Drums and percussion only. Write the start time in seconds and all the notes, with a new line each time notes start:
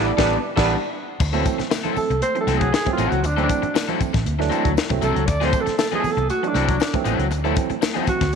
0.18 kick, snare
0.57 kick, snare, crash
1.20 kick, crash, tambourine
1.34 closed hi-hat, muted conga, high conga
1.46 kick, closed hi-hat, tambourine
1.59 snare, closed hi-hat
1.71 snare, tambourine, high conga
1.85 closed hi-hat, muted conga, low conga
1.96 open hi-hat, tambourine, low conga
2.11 closed hi-hat
2.22 closed hi-hat, tambourine, muted conga, high conga
2.35 closed hi-hat, muted conga
2.47 snare, closed hi-hat, tambourine, high conga
2.61 kick, closed hi-hat, high conga
2.74 snare, tambourine
2.87 kick, closed hi-hat, high conga
2.98 closed hi-hat, tambourine, low conga
3.12 closed hi-hat
3.24 closed hi-hat, tambourine, muted conga
3.37 closed hi-hat, muted conga, high conga
3.50 kick, closed hi-hat, tambourine
3.63 closed hi-hat
3.75 snare, tambourine, muted conga, high conga
3.89 closed hi-hat, muted conga, low conga
4.01 kick, closed hi-hat, tambourine, low conga
4.14 kick, snare, closed hi-hat
4.26 closed hi-hat, muted conga, high conga
4.39 snare, muted conga
4.51 closed hi-hat, tambourine, high conga
4.65 kick, closed hi-hat, high conga
4.77 snare, tambourine
4.90 kick, closed hi-hat, muted conga, high conga
5.02 closed hi-hat, tambourine, low conga
5.16 closed hi-hat
5.28 kick, closed hi-hat, tambourine
5.41 snare, closed hi-hat, muted conga, high conga
5.53 kick, closed hi-hat, tambourine
5.67 snare, closed hi-hat
5.79 snare, tambourine, muted conga, high conga
5.92 closed hi-hat, muted conga, low conga
6.04 open hi-hat, tambourine, low conga
6.18 closed hi-hat
6.29 closed hi-hat, tambourine, muted conga, high conga
6.43 closed hi-hat, muted conga
6.54 snare, closed hi-hat, tambourine, high conga
6.69 kick, closed hi-hat
6.80 snare, tambourine
6.94 kick, closed hi-hat, muted conga, high conga
7.05 closed hi-hat, tambourine, low conga
7.19 closed hi-hat
7.31 closed hi-hat, tambourine
7.45 closed hi-hat, muted conga, high conga
7.56 kick, closed hi-hat, tambourine
7.70 closed hi-hat
7.82 snare, tambourine, muted conga, high conga
7.96 closed hi-hat, low conga
8.07 kick, closed hi-hat, tambourine, low conga
8.21 kick, snare, closed hi-hat